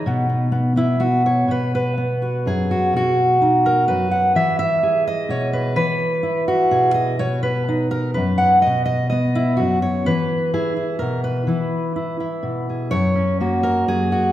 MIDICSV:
0, 0, Header, 1, 2, 480
1, 0, Start_track
1, 0, Key_signature, 5, "major"
1, 0, Tempo, 476190
1, 52, Time_signature, 3, 2, 24, 8
1, 11573, Tempo, 481541
1, 14406, End_track
2, 0, Start_track
2, 0, Title_t, "Steel-string acoustic guitar"
2, 0, Program_c, 0, 25
2, 0, Note_on_c, 0, 63, 71
2, 61, Note_on_c, 0, 47, 83
2, 72, Note_on_c, 0, 59, 50
2, 286, Note_off_c, 0, 59, 0
2, 298, Note_on_c, 0, 59, 43
2, 510, Note_off_c, 0, 59, 0
2, 522, Note_on_c, 0, 59, 65
2, 752, Note_off_c, 0, 63, 0
2, 754, Note_off_c, 0, 59, 0
2, 766, Note_on_c, 0, 59, 41
2, 779, Note_on_c, 0, 64, 83
2, 999, Note_off_c, 0, 59, 0
2, 1006, Note_on_c, 0, 66, 79
2, 1011, Note_on_c, 0, 59, 60
2, 1019, Note_off_c, 0, 64, 0
2, 1256, Note_off_c, 0, 66, 0
2, 1269, Note_on_c, 0, 73, 81
2, 1475, Note_off_c, 0, 59, 0
2, 1481, Note_off_c, 0, 47, 0
2, 1493, Note_on_c, 0, 47, 68
2, 1511, Note_off_c, 0, 73, 0
2, 1522, Note_on_c, 0, 71, 90
2, 1750, Note_off_c, 0, 71, 0
2, 1762, Note_on_c, 0, 71, 88
2, 1992, Note_on_c, 0, 59, 55
2, 2237, Note_on_c, 0, 66, 43
2, 2471, Note_off_c, 0, 47, 0
2, 2478, Note_on_c, 0, 42, 60
2, 2483, Note_off_c, 0, 71, 0
2, 2492, Note_on_c, 0, 68, 82
2, 2719, Note_off_c, 0, 66, 0
2, 2731, Note_on_c, 0, 66, 68
2, 2955, Note_on_c, 0, 47, 64
2, 2956, Note_off_c, 0, 42, 0
2, 2963, Note_off_c, 0, 66, 0
2, 2989, Note_on_c, 0, 66, 92
2, 3203, Note_off_c, 0, 68, 0
2, 3439, Note_off_c, 0, 59, 0
2, 3443, Note_on_c, 0, 63, 66
2, 3687, Note_on_c, 0, 70, 95
2, 3905, Note_off_c, 0, 70, 0
2, 3906, Note_off_c, 0, 47, 0
2, 3910, Note_on_c, 0, 71, 85
2, 3927, Note_on_c, 0, 42, 56
2, 4142, Note_off_c, 0, 66, 0
2, 4146, Note_on_c, 0, 78, 77
2, 4353, Note_off_c, 0, 63, 0
2, 4379, Note_off_c, 0, 71, 0
2, 4380, Note_off_c, 0, 78, 0
2, 4387, Note_off_c, 0, 42, 0
2, 4388, Note_on_c, 0, 52, 62
2, 4395, Note_on_c, 0, 76, 96
2, 4614, Note_off_c, 0, 76, 0
2, 4626, Note_on_c, 0, 76, 102
2, 4870, Note_on_c, 0, 68, 60
2, 5092, Note_off_c, 0, 76, 0
2, 5115, Note_on_c, 0, 75, 97
2, 5331, Note_on_c, 0, 47, 64
2, 5346, Note_on_c, 0, 73, 92
2, 5573, Note_off_c, 0, 73, 0
2, 5577, Note_on_c, 0, 71, 80
2, 5784, Note_off_c, 0, 68, 0
2, 5790, Note_off_c, 0, 52, 0
2, 5795, Note_off_c, 0, 71, 0
2, 5802, Note_on_c, 0, 52, 63
2, 5803, Note_off_c, 0, 75, 0
2, 5805, Note_off_c, 0, 47, 0
2, 5807, Note_on_c, 0, 71, 99
2, 6280, Note_on_c, 0, 64, 63
2, 6526, Note_off_c, 0, 71, 0
2, 6530, Note_on_c, 0, 66, 79
2, 6766, Note_on_c, 0, 47, 51
2, 6766, Note_on_c, 0, 68, 76
2, 6993, Note_off_c, 0, 66, 0
2, 6997, Note_on_c, 0, 75, 83
2, 7228, Note_off_c, 0, 47, 0
2, 7229, Note_off_c, 0, 64, 0
2, 7246, Note_off_c, 0, 68, 0
2, 7250, Note_off_c, 0, 75, 0
2, 7250, Note_on_c, 0, 73, 96
2, 7255, Note_on_c, 0, 47, 68
2, 7259, Note_off_c, 0, 52, 0
2, 7483, Note_off_c, 0, 73, 0
2, 7487, Note_on_c, 0, 71, 90
2, 7747, Note_on_c, 0, 63, 62
2, 7969, Note_off_c, 0, 71, 0
2, 7973, Note_on_c, 0, 70, 88
2, 8203, Note_off_c, 0, 70, 0
2, 8207, Note_on_c, 0, 71, 75
2, 8228, Note_off_c, 0, 47, 0
2, 8230, Note_on_c, 0, 42, 57
2, 8444, Note_on_c, 0, 78, 92
2, 8682, Note_off_c, 0, 63, 0
2, 8685, Note_off_c, 0, 78, 0
2, 8689, Note_on_c, 0, 75, 94
2, 8710, Note_off_c, 0, 42, 0
2, 8734, Note_on_c, 0, 47, 67
2, 8914, Note_off_c, 0, 75, 0
2, 8926, Note_on_c, 0, 75, 93
2, 8938, Note_off_c, 0, 71, 0
2, 9157, Note_off_c, 0, 75, 0
2, 9169, Note_on_c, 0, 75, 89
2, 9194, Note_on_c, 0, 59, 63
2, 9428, Note_on_c, 0, 64, 91
2, 9639, Note_off_c, 0, 75, 0
2, 9643, Note_on_c, 0, 66, 72
2, 9665, Note_off_c, 0, 64, 0
2, 9668, Note_on_c, 0, 42, 62
2, 9675, Note_off_c, 0, 47, 0
2, 9891, Note_off_c, 0, 66, 0
2, 9901, Note_on_c, 0, 73, 83
2, 10140, Note_off_c, 0, 73, 0
2, 10142, Note_off_c, 0, 42, 0
2, 10143, Note_on_c, 0, 71, 101
2, 10149, Note_off_c, 0, 59, 0
2, 10153, Note_on_c, 0, 52, 75
2, 10617, Note_off_c, 0, 71, 0
2, 10620, Note_on_c, 0, 64, 67
2, 10622, Note_on_c, 0, 68, 78
2, 10848, Note_off_c, 0, 64, 0
2, 10852, Note_on_c, 0, 64, 45
2, 11073, Note_off_c, 0, 68, 0
2, 11077, Note_on_c, 0, 70, 78
2, 11100, Note_on_c, 0, 47, 62
2, 11324, Note_off_c, 0, 70, 0
2, 11328, Note_on_c, 0, 71, 68
2, 11542, Note_off_c, 0, 64, 0
2, 11549, Note_off_c, 0, 52, 0
2, 11561, Note_on_c, 0, 52, 67
2, 11576, Note_off_c, 0, 47, 0
2, 11577, Note_on_c, 0, 64, 45
2, 12037, Note_off_c, 0, 64, 0
2, 12049, Note_on_c, 0, 64, 62
2, 12280, Note_off_c, 0, 64, 0
2, 12292, Note_on_c, 0, 64, 45
2, 12517, Note_on_c, 0, 47, 55
2, 12778, Note_off_c, 0, 71, 0
2, 12782, Note_on_c, 0, 68, 39
2, 12990, Note_off_c, 0, 64, 0
2, 12992, Note_off_c, 0, 68, 0
2, 12995, Note_on_c, 0, 73, 113
2, 13005, Note_on_c, 0, 42, 75
2, 13010, Note_off_c, 0, 47, 0
2, 13013, Note_off_c, 0, 52, 0
2, 13240, Note_on_c, 0, 61, 46
2, 13486, Note_off_c, 0, 73, 0
2, 13490, Note_on_c, 0, 58, 57
2, 13496, Note_on_c, 0, 66, 49
2, 13714, Note_off_c, 0, 61, 0
2, 13718, Note_on_c, 0, 70, 96
2, 13952, Note_off_c, 0, 42, 0
2, 13963, Note_off_c, 0, 70, 0
2, 13964, Note_on_c, 0, 42, 59
2, 13966, Note_on_c, 0, 68, 92
2, 14192, Note_off_c, 0, 66, 0
2, 14204, Note_on_c, 0, 66, 74
2, 14406, Note_off_c, 0, 42, 0
2, 14406, Note_off_c, 0, 58, 0
2, 14406, Note_off_c, 0, 66, 0
2, 14406, Note_off_c, 0, 68, 0
2, 14406, End_track
0, 0, End_of_file